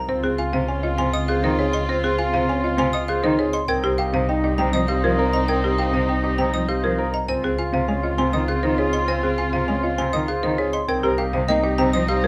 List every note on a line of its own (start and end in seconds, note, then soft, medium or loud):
0.00 0.13 A#5 medium
0.08 3.53 C#2 medium
0.08 3.49 C4 medium
0.08 0.28 C4 medium
0.08 3.49 F4 medium
0.08 3.50 F4 medium
0.08 0.28 C5 medium
0.23 0.35 C4 medium
0.23 0.43 G#4 medium
0.38 0.58 F4 medium
0.38 0.58 F5 medium
0.38 0.58 G#5 medium
0.53 0.65 C3 medium
0.53 0.73 F5 medium
0.68 0.88 C#4 medium
0.68 0.88 G#5 medium
0.83 1.03 F4 medium
0.83 1.03 D#5 medium
0.98 1.09 C3 medium
0.98 1.18 G#5 medium
0.98 1.18 C6 medium
1.13 1.33 D#5 medium
1.13 1.33 D#6 medium
1.28 1.48 G#4 medium
1.28 1.48 C5 medium
1.28 1.48 F5 medium
1.43 1.55 D#3 medium
1.43 1.63 D#4 medium
1.43 1.63 C5 medium
1.59 1.78 G#4 medium
1.59 1.78 C#5 medium
1.73 1.93 D#5 medium
1.73 1.93 C6 medium
1.89 2.08 C4 medium
1.89 2.08 C5 medium
2.03 2.15 C4 medium
2.03 2.23 G#4 medium
2.18 2.38 F4 medium
2.18 2.38 F5 medium
2.18 2.38 G#5 medium
2.33 2.45 C3 medium
2.33 2.53 F5 medium
2.49 2.68 C#4 medium
2.49 2.68 G#5 medium
2.64 2.83 F4 medium
2.64 2.83 D#5 medium
2.78 2.89 C3 medium
2.78 2.98 G#5 medium
2.78 2.98 C6 medium
2.93 3.13 D#5 medium
2.93 3.13 D#6 medium
3.08 3.28 G#4 medium
3.08 3.28 C5 medium
3.08 3.28 F5 medium
3.23 3.35 D#3 medium
3.23 3.43 D#4 medium
3.23 3.43 C5 medium
3.38 3.58 G#4 medium
3.38 3.58 C#5 medium
3.53 3.73 D#5 medium
3.53 3.73 C6 medium
3.68 7.13 C2 medium
3.68 7.09 C4 medium
3.68 3.88 C4 medium
3.68 7.09 D#4 medium
3.68 7.10 D#4 medium
3.68 3.88 A#4 medium
3.68 3.88 G5 medium
3.84 3.95 C4 medium
3.84 4.03 G4 medium
3.98 4.18 G4 medium
3.98 4.18 F5 medium
3.98 4.18 G5 medium
4.13 4.25 C3 medium
4.13 4.33 F5 medium
4.29 4.48 D#4 medium
4.29 4.48 G5 medium
4.44 4.63 G4 medium
4.44 4.63 D#5 medium
4.58 4.70 C3 medium
4.58 4.78 C4 medium
4.58 4.78 G5 medium
4.58 4.78 A#5 medium
4.73 4.85 F3 medium
4.73 4.93 D#5 medium
4.73 4.93 D#6 medium
4.88 5.08 G4 medium
4.88 5.08 C5 medium
4.88 5.08 F5 medium
5.04 5.15 F3 medium
5.04 5.23 F4 medium
5.04 5.23 A#4 medium
5.19 5.38 A#4 medium
5.19 5.38 C5 medium
5.33 5.53 D#5 medium
5.33 5.53 A#5 medium
5.48 5.68 C4 medium
5.48 5.68 A#4 medium
5.48 5.68 G5 medium
5.64 5.75 C4 medium
5.64 5.83 G4 medium
5.78 5.98 G4 medium
5.78 5.98 F5 medium
5.78 5.98 G5 medium
5.93 6.05 C3 medium
5.93 6.13 F5 medium
6.09 6.28 D#4 medium
6.09 6.28 G5 medium
6.24 6.43 G4 medium
6.24 6.43 D#5 medium
6.38 6.50 C3 medium
6.38 6.58 C4 medium
6.38 6.58 G5 medium
6.38 6.58 A#5 medium
6.54 6.65 F3 medium
6.54 6.73 D#5 medium
6.54 6.73 D#6 medium
6.68 6.88 G4 medium
6.68 6.88 C5 medium
6.68 6.88 F5 medium
6.83 6.95 F3 medium
6.83 7.03 F4 medium
6.83 7.03 A#4 medium
6.98 7.18 A#4 medium
6.98 7.18 C5 medium
7.14 7.33 D#5 medium
7.14 7.33 A#5 medium
7.28 10.73 C#2 medium
7.28 10.69 C4 medium
7.28 7.48 C4 medium
7.28 10.69 F4 medium
7.28 10.70 F4 medium
7.28 7.48 C5 medium
7.28 7.48 G#5 medium
7.43 7.55 C4 medium
7.43 7.63 G#4 medium
7.58 7.78 F4 medium
7.58 7.78 F5 medium
7.58 7.78 G#5 medium
7.73 7.84 C3 medium
7.73 7.93 F5 medium
7.88 8.00 G#3 medium
7.88 8.08 C#4 medium
7.88 8.08 G#5 medium
8.03 8.23 F4 medium
8.03 8.23 D#5 medium
8.18 8.30 C3 medium
8.18 8.38 C4 medium
8.18 8.38 G#5 medium
8.18 8.38 C6 medium
8.33 8.44 D#3 medium
8.33 8.53 D#5 medium
8.33 8.53 D#6 medium
8.48 8.68 G#4 medium
8.48 8.68 C5 medium
8.48 8.68 F5 medium
8.63 8.75 D#3 medium
8.63 8.83 D#4 medium
8.63 8.83 C5 medium
8.78 8.98 G#4 medium
8.78 8.98 C#5 medium
8.93 9.13 D#5 medium
8.93 9.13 C6 medium
9.08 9.28 C4 medium
9.08 9.28 C5 medium
9.08 9.28 G#5 medium
9.23 9.35 C4 medium
9.23 9.43 G#4 medium
9.38 9.58 F4 medium
9.38 9.58 F5 medium
9.38 9.58 G#5 medium
9.53 9.65 C3 medium
9.53 9.73 F5 medium
9.68 9.80 G#3 medium
9.68 9.88 C#4 medium
9.68 9.88 G#5 medium
9.83 10.03 F4 medium
9.83 10.03 D#5 medium
9.98 10.10 C3 medium
9.98 10.18 C4 medium
9.98 10.18 G#5 medium
9.98 10.18 C6 medium
10.13 10.25 D#3 medium
10.13 10.33 D#5 medium
10.13 10.33 D#6 medium
10.28 10.48 G#4 medium
10.28 10.48 C5 medium
10.28 10.48 F5 medium
10.43 10.55 D#3 medium
10.43 10.63 D#4 medium
10.43 10.63 C5 medium
10.58 10.78 G#4 medium
10.58 10.78 C#5 medium
10.73 10.93 D#5 medium
10.73 10.93 C6 medium
10.88 12.27 C2 medium
10.88 11.08 C4 medium
10.88 12.27 C4 medium
10.88 12.27 D#4 medium
10.88 11.08 A#4 medium
10.88 11.08 G5 medium
11.03 11.15 C4 medium
11.03 11.23 G4 medium
11.03 11.23 A#4 medium
11.18 11.38 G4 medium
11.18 11.38 F5 medium
11.18 11.38 G5 medium
11.33 11.45 C3 medium
11.33 11.53 F5 medium
11.48 11.60 A#3 medium
11.48 11.68 D#4 medium
11.48 11.68 D#5 medium
11.48 11.68 G5 medium
11.63 11.83 G4 medium
11.63 11.83 D#5 medium
11.78 11.90 C3 medium
11.78 11.98 C4 medium
11.78 11.98 G5 medium
11.78 11.98 A#5 medium
11.93 12.05 F3 medium
11.93 12.13 D#5 medium
11.93 12.13 D#6 medium
12.08 12.27 G4 medium
12.08 12.27 C5 medium
12.08 12.27 F5 medium
12.24 12.27 F3 medium
12.24 12.27 F4 medium
12.24 12.27 A#4 medium